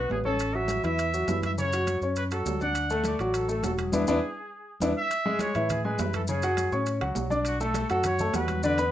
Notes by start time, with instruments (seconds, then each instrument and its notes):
Already playing: grand piano B3 B4
0.10 fingered electric bass A1, trumpet G#4, high conga, low timbale
0.24 grand piano C#4 C#5, trumpet A4, high conga
0.39 high conga, high timbale, maracas
0.54 grand piano F#3 F#4, trumpet E5, high conga
0.68 high conga, high timbale, low timbale, maracas
0.83 fingered electric bass E2, grand piano E3 E4, trumpet E5, high timbale, maracas
0.98 high conga, high timbale, maracas
1.13 grand piano F#3 F#4, high conga, maracas
1.28 fingered electric bass F#2, grand piano E3 E4, high conga, high timbale, low timbale, maracas
1.42 trumpet E5, high conga, high timbale, maracas
1.58 grand piano C#3 C#4, trumpet C#5, maracas
1.73 grand piano F#3 F#4, high conga, high timbale, maracas
1.87 high conga, high timbale, low timbale, maracas
2.01 fingered electric bass F#2, grand piano C#4 C#5, high conga, maracas
2.16 trumpet B4, high conga, high timbale, maracas
2.31 grand piano F#3 F#4, trumpet A4, high conga, high timbale, maracas
2.46 fingered electric bass D2, high conga, low timbale, maracas
2.60 grand piano D4 D5, trumpet F#5, high conga, maracas
2.75 high conga, high timbale, maracas
2.89 grand piano A3 A4, high conga, maracas
3.04 trumpet D5, high conga, high timbale, low timbale, maracas
3.19 fingered electric bass A1, grand piano F#3 F#4, high timbale, maracas
3.34 trumpet A4, high conga, high timbale, maracas
3.48 grand piano A3 A4, trumpet A4, high conga, maracas
3.63 fingered electric bass E1, grand piano F#3 F#4, trumpet A4, high conga, high timbale, low timbale, maracas
3.78 trumpet G#4, high conga, high timbale, maracas
3.92 fingered electric bass E2, grand piano B3 D4 E4, high conga, high timbale, maracas
4.07 fingered electric bass E2, grand piano B3 D4 E4, high conga, high timbale, maracas
4.80 fingered electric bass E2, grand piano B3 D4 E4, high conga, high timbale, maracas
4.98 trumpet E5
5.10 high conga, high timbale, maracas
5.25 grand piano G#3 G#4 G#5, high conga
5.39 trumpet C#5, high conga, high timbale, low timbale, maracas
5.55 fingered electric bass A2, grand piano E3 E4 E5, high timbale, maracas
5.69 trumpet G#4, high conga, low conga, high timbale, maracas
5.84 grand piano G#3 G#4 G#5, trumpet B4, high conga
5.98 fingered electric bass F#2, grand piano E3 E4 E5, high conga, high timbale, low timbale, maracas
6.13 trumpet A4, high conga, high timbale, maracas
6.27 grand piano C#3 C#4 C#5, trumpet G#4, high conga, maracas
6.42 grand piano F#3 F#4 F#5, high conga, high timbale, maracas
6.57 high conga, high timbale, low timbale, maracas
6.72 fingered electric bass A2, grand piano C#4 C#5 C#6, high conga, maracas
6.86 high conga, high timbale, maracas
7.01 fingered electric bass C#2, grand piano F#3 F#4 F#5, high conga, high timbale
7.15 fingered electric bass B1, high conga, low timbale, maracas
7.30 grand piano D4 D5 D6, high conga, maracas
7.45 trumpet F#4, high conga, high timbale, maracas
7.60 grand piano A3 A4 A5, trumpet A4, high conga, maracas
7.74 high conga, high timbale, low timbale, maracas
7.89 fingered electric bass F#2, grand piano F#3 F#4 F#5, trumpet A4, high timbale, maracas
8.03 trumpet C#5, high conga, low conga, high timbale, maracas
8.19 grand piano A3 A4 A5, high conga, low conga, maracas
8.34 fingered electric bass E2, grand piano F#3 F#4 F#5, trumpet B4, high conga, high timbale, low timbale, maracas
8.48 high conga, high timbale, maracas
8.63 grand piano D3 D4 D5, trumpet B4, maracas
8.78 grand piano B3 B4 B5, high conga, high timbale, maracas